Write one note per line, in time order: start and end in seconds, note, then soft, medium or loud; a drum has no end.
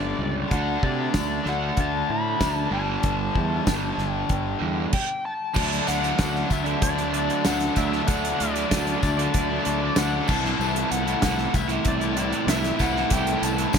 0.00 0.12 G1 medium
0.00 0.48 G2 medium
0.00 0.47 D3 medium
0.00 0.50 D3 medium
0.00 0.50 G3 medium
0.00 0.51 G3 medium
0.00 0.54 D4 medium
0.00 0.34 D5 medium
0.19 0.43 C#2 medium
0.51 0.76 D2 loud
0.51 1.44 D3 medium
0.51 1.46 A3 medium
0.51 1.44 D4 medium
0.51 0.84 F#5 loud
0.51 kick loud
0.51 closed hi-hat medium
0.83 1.07 C3 medium
0.83 1.49 D5 loud
0.83 kick medium
1.14 1.39 D2 medium
1.14 kick medium
1.14 snare loud
1.14 closed hi-hat medium
1.14 tambourine medium
1.44 1.70 D2 medium
1.44 2.38 D3 medium
1.44 2.41 A3 medium
1.44 2.43 D4 medium
1.44 snare soft
1.49 1.80 F#5 loud
1.77 2.02 D2 medium
1.77 2.09 A5 loud
1.77 kick loud
1.77 closed hi-hat medium
2.10 2.34 A2 medium
2.10 2.55 B5 loud
2.39 2.65 D2 medium
2.39 2.70 D3 medium
2.39 2.71 A3 medium
2.39 2.72 D4 medium
2.39 kick medium
2.39 snare loud
2.39 closed hi-hat medium
2.39 tambourine medium
2.55 2.70 A5 loud
2.71 2.96 G1 medium
2.71 3.64 G2 medium
2.71 3.66 D3 medium
2.71 4.13 A5 medium
2.75 3.67 G3 loud
3.03 3.28 G1 loud
3.03 kick loud
3.03 closed hi-hat medium
3.35 3.59 E2 medium
3.35 kick medium
3.65 3.91 G1 medium
3.65 4.59 G2 medium
3.65 4.60 D3 medium
3.65 4.58 G3 medium
3.65 kick medium
3.65 snare loud
3.65 closed hi-hat medium
3.65 tambourine medium
3.98 4.22 G1 medium
3.98 snare soft
4.13 4.90 G5 medium
4.29 4.54 G1 medium
4.29 kick loud
4.29 closed hi-hat medium
4.59 4.85 E2 medium
4.59 4.92 G2 medium
4.59 4.91 D3 medium
4.59 4.90 G3 medium
4.93 5.23 G5 loud
4.93 kick loud
4.93 crash loud
5.25 5.88 A5 loud
5.54 5.80 D2 loud
5.54 6.16 D3 medium
5.54 6.03 F#3 loud
5.54 6.02 A3 medium
5.54 6.00 D4 loud
5.54 kick loud
5.54 crash loud
5.54 tambourine medium
5.73 closed hi-hat medium
5.87 6.11 D2 loud
5.87 6.18 D3 medium
5.87 6.19 F#3 medium
5.87 6.20 A3 medium
5.87 6.19 F#5 loud
5.87 closed hi-hat medium
5.87 tambourine medium
5.91 6.21 D4 medium
6.01 6.18 F#3 medium
6.01 6.19 A3 medium
6.01 6.19 D4 medium
6.01 closed hi-hat soft
6.17 6.42 D2 medium
6.17 6.48 D3 medium
6.17 6.36 F#3 medium
6.17 6.34 A3 medium
6.17 6.32 D4 medium
6.17 6.52 F#5 medium
6.17 kick medium
6.17 snare loud
6.17 closed hi-hat loud
6.17 tambourine medium
6.33 6.49 F#3 medium
6.33 6.50 A3 medium
6.33 6.49 D4 medium
6.33 snare soft
6.49 6.74 D2 medium
6.49 6.97 D3 medium
6.49 6.66 F#3 medium
6.49 6.67 A3 medium
6.49 6.66 D4 medium
6.49 6.82 E5 medium
6.49 muted overdriven electric guitar stroke soft
6.49 kick medium
6.49 closed hi-hat medium
6.49 tambourine medium
6.64 6.97 F#3 medium
6.64 6.97 A3 medium
6.64 6.94 D4 medium
6.64 muted overdriven electric guitar stroke medium
6.64 closed hi-hat soft
6.82 7.29 D2 medium
6.82 7.47 D5 loud
6.82 kick loud
6.82 closed hi-hat loud
6.95 7.10 F#3 medium
6.95 7.12 A3 medium
6.95 7.12 D4 medium
6.95 closed hi-hat soft
7.10 7.42 D3 medium
7.10 7.44 F#3 medium
7.10 7.45 A3 medium
7.10 7.45 D4 medium
7.10 closed hi-hat medium
7.15 7.44 D3 medium
7.15 7.30 F#3 medium
7.15 7.31 A3 medium
7.15 7.29 D4 medium
7.30 muted overdriven electric guitar stroke soft
7.30 closed hi-hat soft
7.43 7.69 D2 medium
7.43 7.73 D3 loud
7.43 7.61 F#3 loud
7.43 7.61 A3 loud
7.43 7.58 D4 loud
7.43 7.75 F#5 loud
7.43 snare loud
7.43 closed hi-hat loud
7.43 tambourine loud
7.59 7.74 F#3 medium
7.59 7.77 A3 medium
7.59 7.76 D4 medium
7.59 snare soft
7.59 closed hi-hat soft
7.74 8.00 D2 medium
7.74 8.05 D3 medium
7.74 7.93 F#3 medium
7.74 7.92 A3 medium
7.74 7.90 D4 medium
7.74 8.09 E5 medium
7.74 kick medium
7.74 closed hi-hat medium
7.74 tambourine medium
7.91 8.06 F#3 medium
7.91 8.08 A3 medium
7.91 8.08 D4 medium
7.91 snare soft
8.06 8.31 D2 loud
8.06 8.67 D3 medium
8.06 8.56 F#3 medium
8.06 8.55 A3 medium
8.06 8.52 D4 loud
8.06 8.40 F#5 loud
8.06 kick loud
8.06 closed hi-hat loud
8.10 tambourine medium
8.25 closed hi-hat medium
8.39 8.63 D2 medium
8.39 8.70 D3 medium
8.39 8.72 F#3 medium
8.39 8.74 A3 medium
8.39 8.74 D4 medium
8.39 8.98 D5 medium
8.39 closed hi-hat medium
8.54 8.68 F#3 medium
8.54 8.71 A3 medium
8.54 8.71 D4 medium
8.54 closed hi-hat soft
8.68 8.95 D2 loud
8.68 9.01 D3 loud
8.68 8.88 F#3 loud
8.68 8.88 A3 medium
8.68 8.85 D4 loud
8.68 kick medium
8.68 snare loud
8.68 closed hi-hat loud
8.68 tambourine medium
8.86 9.01 F#3 medium
8.86 9.02 A3 medium
8.86 9.01 D4 medium
8.86 closed hi-hat soft
9.02 9.26 D2 medium
9.02 9.49 D3 medium
9.02 9.18 F#3 medium
9.02 9.19 A3 medium
9.02 10.00 D5 loud
9.02 muted overdriven electric guitar stroke soft
9.02 kick medium
9.02 closed hi-hat medium
9.02 tambourine medium
9.06 9.17 D4 medium
9.17 9.51 F#3 medium
9.17 9.50 A3 medium
9.17 9.48 D4 medium
9.17 muted overdriven electric guitar stroke medium
9.17 closed hi-hat medium
9.34 9.57 D2 loud
9.34 kick loud
9.34 closed hi-hat loud
9.49 9.65 F#3 medium
9.49 9.67 A3 medium
9.49 9.67 D4 medium
9.65 9.89 D2 medium
9.65 9.95 D3 medium
9.65 9.97 F#3 medium
9.65 9.99 A3 medium
9.65 9.99 D4 medium
9.65 closed hi-hat medium
9.82 muted overdriven electric guitar stroke soft
9.96 10.20 D2 medium
9.96 10.26 D3 medium
9.96 10.15 F#3 medium
9.96 10.15 A3 loud
9.96 10.28 F#5 loud
9.96 snare loud
9.96 closed hi-hat loud
9.96 tambourine medium
10.01 10.12 D4 loud
10.13 10.28 F#3 medium
10.13 10.30 A3 medium
10.13 10.26 D4 medium
10.28 10.52 C2 loud
10.28 12.77 A2 medium
10.28 10.59 C3 medium
10.28 10.47 E3 medium
10.28 10.45 A3 loud
10.28 10.44 E4 loud
10.28 10.91 A5 loud
10.28 kick loud
10.28 tambourine medium
10.28 crash loud
10.44 10.60 E3 medium
10.44 10.61 A3 medium
10.44 10.62 E4 medium
10.44 snare soft
10.59 10.83 C2 loud
10.59 11.21 C3 medium
10.59 11.10 E3 loud
10.59 11.08 A3 loud
10.59 11.06 E4 loud
10.59 tambourine medium
10.76 closed hi-hat medium
10.90 11.14 C2 loud
10.90 11.21 C3 medium
10.90 11.22 E3 medium
10.90 11.23 A3 medium
10.90 11.24 E4 medium
10.90 11.20 F#5 medium
10.90 closed hi-hat medium
11.06 11.24 A3 medium
11.06 11.24 E4 medium
11.06 closed hi-hat soft
11.10 11.23 E3 medium
11.22 11.46 C2 loud
11.22 11.53 C3 medium
11.22 11.40 E3 loud
11.22 11.38 A3 loud
11.22 11.36 E4 loud
11.22 11.55 F#5 loud
11.22 kick medium
11.22 snare loud
11.22 closed hi-hat loud
11.22 tambourine medium
11.37 11.53 E3 medium
11.37 11.54 A3 medium
11.37 11.54 E4 medium
11.37 snare soft
11.53 11.77 C2 medium
11.53 12.01 C3 medium
11.53 11.70 E3 medium
11.53 11.71 A3 medium
11.53 11.70 E4 medium
11.53 11.84 E5 medium
11.53 muted overdriven electric guitar stroke soft
11.53 kick medium
11.53 closed hi-hat medium
11.53 tambourine medium
11.68 12.02 E3 medium
11.68 12.02 A3 medium
11.68 11.98 E4 medium
11.68 muted overdriven electric guitar stroke medium
11.68 closed hi-hat soft
11.85 12.32 C2 medium
11.85 12.49 D5 loud
11.85 kick loud
11.85 closed hi-hat medium
12.00 12.15 E3 medium
12.00 12.17 A3 medium
12.00 12.17 E4 medium
12.00 closed hi-hat soft
12.15 12.44 C3 medium
12.15 12.45 E3 medium
12.15 12.47 A3 medium
12.15 12.47 E4 medium
12.15 closed hi-hat medium
12.32 muted overdriven electric guitar stroke medium
12.32 closed hi-hat soft
12.45 12.70 C2 medium
12.45 12.76 C3 medium
12.45 12.63 E3 medium
12.45 12.63 A3 loud
12.45 12.60 E4 loud
12.45 snare loud
12.45 closed hi-hat loud
12.45 tambourine loud
12.50 12.81 E5 loud
12.61 12.78 E3 medium
12.61 12.79 A3 medium
12.61 12.80 E4 medium
12.61 snare soft
12.61 closed hi-hat soft
12.77 13.03 C2 medium
12.77 13.79 A2 medium
12.77 13.07 C3 medium
12.77 12.94 E3 medium
12.77 12.93 A3 medium
12.77 12.91 E4 medium
12.77 kick medium
12.77 closed hi-hat medium
12.77 tambourine medium
12.81 13.12 F#5 medium
12.92 13.07 E3 medium
12.92 13.10 A3 medium
12.92 13.10 E4 medium
12.96 13.13 A3 medium
12.96 13.13 E4 medium
12.96 snare soft
13.08 13.34 C2 medium
13.08 13.70 C3 medium
13.08 13.57 E3 loud
13.08 13.57 A3 loud
13.08 13.54 E4 loud
13.08 kick loud
13.08 closed hi-hat loud
13.08 tambourine medium
13.13 13.44 G5 loud
13.27 closed hi-hat medium
13.42 13.65 C2 medium
13.42 13.74 C3 medium
13.42 13.75 E3 medium
13.42 13.77 A3 medium
13.42 13.76 E4 medium
13.42 13.79 A5 loud
13.42 closed hi-hat medium
13.42 tambourine medium
13.56 13.71 E3 medium
13.56 13.73 A3 medium
13.56 13.73 E4 medium
13.56 closed hi-hat soft
13.71 13.79 C2 loud
13.71 13.79 C3 medium
13.71 13.79 E3 medium
13.71 13.79 A3 loud
13.71 13.79 E4 medium
13.71 kick medium
13.71 snare loud
13.71 closed hi-hat loud
13.71 tambourine loud